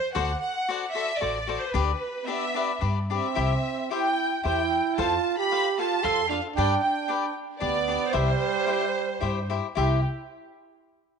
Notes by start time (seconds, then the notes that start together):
Already playing: C5
0.14 D2 F#4 A4 C5 D5 F#5
0.40 F#5
0.68 F#4 A4 C5 D5
0.93 F#4 A4 C5 D5 E5
1.18 A1 F#4 A4 C5 D5
1.47 F#4 A4 C5 D5
1.59 C5
1.71 D2 D4 B4
1.75 G4 D5
2.25 B3 D4 G4 B4 D5 E5
2.54 D4 G4 B4 D5
2.81 G2 D4 G4 B4 D5
3.10 C4 D4 G4 B4 D5
3.15 E5
3.35 C2 E4 G4 C5 E5
3.90 E4 G4 C5 E5 G5
4.43 E2 E4 G4 C5 E5 G5
4.98 F2 F4 A4 C5 F5 A5
5.38 G4 B5
5.51 F4 A4 C5 F5
5.78 F4 A4 C5 F5 A5
6.03 F2 F4 A4 C5 F5 C6
6.29 D4 F4 A4 C5 F5
6.55 G2 D4 G4 B4 D5 G5
6.83 D4 G5
7.08 D4 G4 B4 D5
7.60 D2 B3 D4 G4 B4 D5
7.88 D4 G4 B4 D5
8.12 C2 E4 G4 C5 E5
8.17 G3
8.66 E4 G4 C5 E5
9.21 G2 E4 G4 C5 E5
9.50 E4 G4 C5 E5
9.75 C2 E4 G4 C5 E5